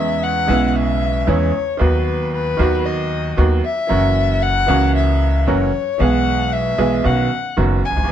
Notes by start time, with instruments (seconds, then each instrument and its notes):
Already playing: upright piano E2 C#3 E3 G#3 B3 E4, upright bass E2, violin E5
0.23 violin F#5
0.47 upright piano B1 B2 C#3 G#3 B3, upright bass B1
0.51 upright piano E4
0.68 violin F#5
0.76 violin E5
1.27 upright piano E2 C#3 E3 G#3 B3 E4, upright bass E2, violin C#5
1.79 upright piano D#2 D#3 F#3 B3 F#4, upright bass D#2, violin B4
2.33 violin B4
2.57 upright piano D#2 D#3 F#3 B3, upright bass D#2
2.61 upright piano F#4
2.85 violin D#5
3.37 upright piano D#2 D#3 F#3 B3 F#4, upright bass D#2
3.65 violin E5
3.87 upright bass F#1, upright piano F#2 E3 F#3 A#3 C#4
3.91 upright piano F#4
4.42 violin F#5
4.66 upright piano C#2 C#3 E3 A#3 C#4, upright bass C#2
4.71 upright piano F#4
4.95 violin E5
5.47 upright bass F#1, upright piano F#2 E3 F#3 A#3 C#4 F#4, violin C#5
5.98 upright piano B1 B2 E3 G#3 B3 G#4, upright bass B1, violin F#5
6.53 violin E5
6.78 upright piano B1 B2 E3 G#3 B3 G#4, upright bass B1
7.04 upright piano B1 B2 D#3 B3 C#4 F#4, upright bass B1, violin F#5
7.57 upright piano F#1 F#2 D#3 B3 C#4 F#4, upright bass F#1
7.85 violin G#5
7.90 upright piano C#2, upright bass C#2
7.97 upright piano D2, upright bass D2
8.03 upright bass D#2, upright piano D#2
8.08 upright piano E3